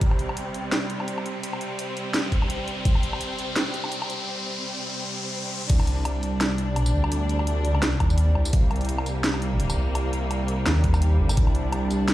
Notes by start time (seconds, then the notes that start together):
Already playing: C3 G3, riser
0.01 C4, kick, closed hi-hat
0.11 low woodblock
0.19 closed hi-hat
0.29 low woodblock
0.37 closed hi-hat
0.54 closed hi-hat
0.72 snare, closed hi-hat
0.90 closed hi-hat
1.00 low woodblock
1.08 closed hi-hat
1.18 low woodblock
1.26 closed hi-hat
1.43 closed hi-hat
1.53 low woodblock
1.61 closed hi-hat
1.79 closed hi-hat
1.97 closed hi-hat
2.14 snare, closed hi-hat
2.32 kick, closed hi-hat
2.42 low woodblock
2.50 closed hi-hat
2.68 closed hi-hat
2.85 kick, closed hi-hat
2.95 low woodblock
3.03 closed hi-hat
3.13 low woodblock
3.21 closed hi-hat
3.39 closed hi-hat
3.56 snare, closed hi-hat
3.74 closed hi-hat
3.84 low woodblock
3.92 closed hi-hat
4.02 low woodblock
4.10 closed hi-hat
5.70 C2 C3 G3 D4, kick, closed hi-hat, crash
5.80 low woodblock
5.87 closed hi-hat
6.05 closed hi-hat, low woodblock
6.23 C2, closed hi-hat
6.41 snare, closed hi-hat, low woodblock
6.58 closed hi-hat
6.72 B1
6.76 closed hi-hat, low woodblock
6.86 tambourine
6.94 D2
7.04 low woodblock
7.12 closed hi-hat
7.29 closed hi-hat
7.39 low woodblock
7.47 closed hi-hat
7.65 C#2, closed hi-hat
7.75 low woodblock
7.82 snare, closed hi-hat
8.00 D#2, kick, closed hi-hat, low woodblock
8.10 tambourine
8.18 closed hi-hat
8.35 C2, low woodblock
8.45 tambourine
8.53 C2 A#3, kick, closed hi-hat
8.71 closed hi-hat, low woodblock
8.76 closed hi-hat
8.81 closed hi-hat
8.85 closed hi-hat
8.89 closed hi-hat
8.98 low woodblock
9.06 C2, closed hi-hat, tambourine
9.24 snare, closed hi-hat
9.34 low woodblock
9.42 closed hi-hat
9.60 closed hi-hat
9.70 tambourine, low woodblock
9.77 C2
9.95 closed hi-hat, low woodblock
10.13 C2, closed hi-hat
10.31 closed hi-hat, low woodblock
10.48 closed hi-hat
10.66 D#2, snare, closed hi-hat, low woodblock
10.84 kick, closed hi-hat
10.94 tambourine, low woodblock
11.02 closed hi-hat
11.19 G1
11.29 tambourine, low woodblock
11.37 C2 D4, kick, closed hi-hat
11.47 low woodblock
11.55 closed hi-hat
11.72 closed hi-hat, low woodblock
11.90 C2, closed hi-hat, tambourine
12.08 snare, closed hi-hat, low woodblock